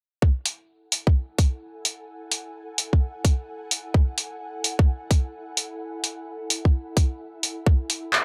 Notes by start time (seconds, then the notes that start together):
0.22 E4, kick
0.43 A4, open hi-hat
0.49 F#5
0.64 G#5
0.92 open hi-hat
1.07 kick
1.38 kick, open hi-hat
1.85 open hi-hat
2.32 open hi-hat
2.78 open hi-hat
2.93 kick
3.25 kick, open hi-hat
3.71 open hi-hat
3.94 kick
4.18 open hi-hat
4.64 open hi-hat
4.79 kick
5.11 kick, open hi-hat
5.57 open hi-hat
6.04 open hi-hat
6.50 open hi-hat
6.65 kick
6.97 kick, open hi-hat
7.43 open hi-hat
7.66 kick
7.90 B4, open hi-hat
8.08 A5
8.13 clap